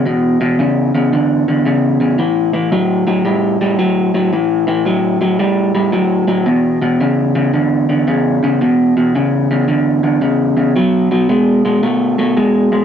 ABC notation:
X:1
M:4/4
L:1/8
Q:"Swing" 1/4=112
K:A
V:1 name="Clean electric guitar" clef=bass
[E,,B,,] [E,,B,,] [E,,C,] [E,,C,] [E,,D,] [E,,D,] [E,,C,] [E,,C,] | [A,,E,] [A,,E,] [A,,F,] [A,,F,] [A,,=G,] [A,,G,] [A,,F,] [A,,F,] | [A,,E,] [A,,E,] [A,,F,] [A,,F,] [A,,=G,] [A,,G,] [A,,F,] [A,,F,] | [E,,B,,] [E,,B,,] [E,,C,] [E,,C,] [E,,D,] [E,,D,] [E,,C,] [E,,C,] |
[E,,B,,] [E,,B,,] [E,,C,] [E,,C,] [E,,D,] [E,,D,] [E,,C,] [E,,C,] | [B,,F,] [B,,F,] [B,,G,] [B,,G,] [B,,A,] [B,,A,] [B,,G,] [B,,G,] |]